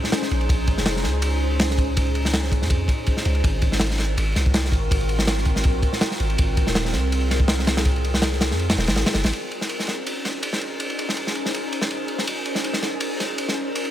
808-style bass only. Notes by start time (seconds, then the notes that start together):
0.31 A#1
0.49 A#1
0.78 F1
1.05 C#2
2.62 F2
3.25 C#2
3.44 G#1
4.17 G#1
4.36 C2
4.72 G#1
4.91 G#1
5.65 A#1
6.20 G#1
6.39 G#1
6.67 D#1
6.94 C2
8.51 F2
8.78 D#1
8.88 G#1
9.15 F#1
9.24 G#1